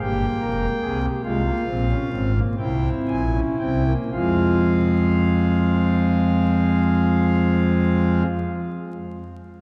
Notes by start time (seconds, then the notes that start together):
0.01 G1 G2 A#3 G4 G5
0.42 F1 F2 A#4
0.82 C2 C3 G#4
1.04 G4
1.24 C2 C3 G#3 F4 F5
1.46 A#3
1.67 A#1 A#2 C4
1.90 C#4
2.11 G#1 G#2 C4
2.35 A#3
2.58 C2 C3 C4 E4 G5
3.08 A#1 A#2 G#5
3.33 C#4
3.59 C2 C3 C4 G5
3.86 A#3
4.13 F2 F3 G#3 C4 F4 G#4 F5